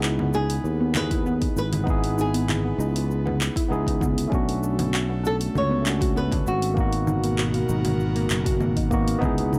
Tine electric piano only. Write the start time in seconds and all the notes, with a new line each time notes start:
Already playing: B3 D#4 E4 G#4
0.92 B3 D#4
0.97 E4 G#4
1.83 B3 D#4
1.88 E4 G#4
3.68 B3 D#4 E4 G#4
4.28 A3 C#4
4.32 D4 F#4
5.82 A3 C#4
5.86 D4 F#4
6.74 A#3 B3
6.79 D#4 F#4
8.91 A#3 B3 D#4 F#4
9.18 B3 D#4
9.23 E4 G#4